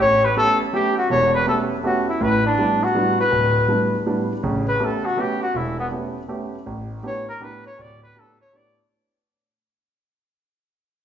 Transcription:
0.00 A1 C#5
0.24 B4
0.36 A3 B3 C#4 G4 A4
0.73 A3 B3 C#4 G4
0.97 F#4
1.10 E1 E2 C#5
1.34 B4
1.47 A3 B3 C#4 G4 A4
1.84 A3 B3 C#4 F#4 G4
2.09 E4
2.21 A1 A2 B4
2.46 D4
2.58 A2 G3 B3 D4
2.83 F#4
2.95 A2 G3 B3 D4
3.20 B4
3.32 D1
3.68 A2 G3 B3 D4
4.06 A2 G3 B3 D4
4.43 A1 C#3
4.68 B4
4.79 A3 B3 C#4 G4
4.84 A4
5.05 F#4
5.17 A3 B3 C#4 G4
5.42 F#4
5.54 E1 E4
5.79 B3
5.92 A3 B3 C#4 G4
6.28 A3 B3 C#4 G4
6.66 A1
7.03 A2 B3 D4 G4 C#5
7.28 A#4
7.40 A2 B3 D4 G4 B4
7.66 C#5
7.78 D1 D5
8.03 B4
8.15 A2 B3 D4 G4 A4
8.41 C#5
8.53 A2 B3 D4 G4 D5

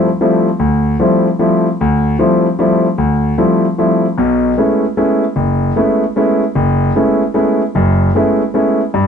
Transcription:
0.21 F3 G3 A3 C4 E4
0.59 D2
1.00 F3 G3 A3 C4 E4
1.39 F3 G3 A3 C4 E4
1.81 D2
2.19 F3 G3 A3 C4 E4
2.59 F3 G3 A3 C4 E4
2.98 D2
3.38 F3 G3 A3 C4 E4
3.78 F3 G3 A3 C4 E4
4.18 B1 B2
4.57 G#3 A3 B3 C#4 E4
4.97 G#3 A3 B3 C#4 E4
5.36 F#1
5.76 G#3 A3 B3 C#4 E4
6.16 G#3 A3 B3 C#4 E4
6.55 F#1
6.96 G#3 A3 B3 C#4 E4
7.34 G#3 A3 B3 C#4 E4
7.75 F#1 F#2
8.15 G#3 A3 B3 C#4 E4
8.54 G#3 A3 B3 C#4 E4
8.94 G2

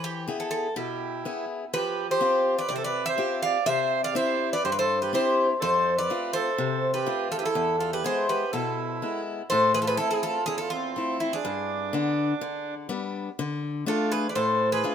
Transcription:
Already playing: E3
0.04 G4
0.28 B3 E4 G#4
0.40 A4
0.51 A4
0.76 B2 E4 G4
1.25 B3 E4 G#4
1.73 F3 G4 B4
2.10 G4 C5
2.21 C4 F4 G4
2.58 B4 D5
2.69 C3 G4 D5
2.76 A4 C5
2.84 B4 D5
3.06 C5 E5
3.18 C4 F4 G4
3.43 D5 F5
3.66 C3 C5 E5
4.04 D5 F5
4.15 C4 E4 G4 C5 E5
4.53 B4 D5
4.64 G2 G4 C5
4.71 B4 D5
4.79 A4 C5
5.02 G4 B4
5.13 C4 E4 G4 C5
5.60 F2 A4 C5
5.97 B4 D5
6.10 A3 C4 F4
6.33 A4 C5
6.58 C3
6.94 G4 B4
7.06 A3 C4 F4
7.31 F4 A4
7.37 G4 B4
7.43 E4 A4
7.55 E2
7.79 F4 A4
7.92 G4 B4
8.04 G#3 B3 E4 G#4 C5
8.29 G4 B4
8.52 B2 E4 A4
9.02 G#3 B3 E4
9.50 A2 A4 C5
9.74 G#4 B4
9.82 F4 A4
9.87 G#4 B4
9.97 A3 C4 E4 A4
10.11 E4 G#4
10.23 F4 A4
10.46 E2 E4 G#4
10.58 F4 A4
10.70 C4 F4
10.96 A3 C4 E4
11.20 C4 E4
11.33 D4 G#4
11.45 G2
11.93 D3 B3 D4
12.41 D3
12.89 G3 B3 D4
13.39 D3
13.86 A3 D4 F4 A4
14.11 G#4 B4
14.29 B4 D5
14.35 A2 A4 C5
14.72 G#4 B4
14.84 A3 D4 F4

